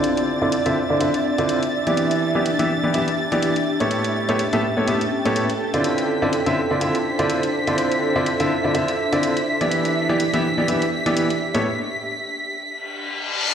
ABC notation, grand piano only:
X:1
M:4/4
L:1/16
Q:"Swing 16ths" 1/4=124
K:Ddor
V:1 name="Grand piano"
[D,CEFd]3 [D,CEFd] z [D,CEFe] z [D,CEFd] [D,CEFe] z2 [D,CEFd]2 z2 [E,B,EGd]- | [E,B,EGd]3 [E,B,EGd] z [E,B,EGe] z [E,B,EGd] [E,B,EGe] z2 [E,B,EGd]2 z2 [A,,B,GA^c]- | [A,,B,GA^c]3 [A,,B,GAc] z [A,,B,GAe] z [A,,B,GAc] [A,,B,GAe] z2 [A,,B,GAc]2 z2 [D,=CEFd]- | [D,CEFd]3 [D,CEFd] z [D,CEFe] z [D,CEFd] [D,CEFe] z2 [D,CEFd]2 z2 [D,CEFd]- |
[D,CEFd]3 [D,CEFd] z [D,CEFe] z [D,CEFd] [D,CEFe] z2 [D,CEFd]2 z2 [E,B,EGd]- | [E,B,EGd]3 [E,B,EGd] z [E,B,EGe] z [E,B,EGd] [E,B,EGe] z2 [E,B,EGd]2 z2 [A,,B,GA^c] | z16 |]